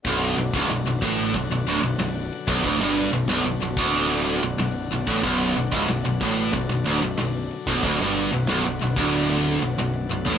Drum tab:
CC |x-x-x-x-x-x-x-x-|x-x-x-x-x-x-x-x-|x-x-x-x-x-x-x-x-|x-x-x-x-x-x-----|
SD |----o------oo---|----o-------o---|----o-------o---|----o-------o---|
T1 |----------------|----------------|----------------|-------------o--|
T2 |----------------|----------------|----------------|--------------o-|
FT |----------------|----------------|----------------|---------------o|
BD |o--o--o-o------o|o------o-------o|o--o--o-o------o|o------o--------|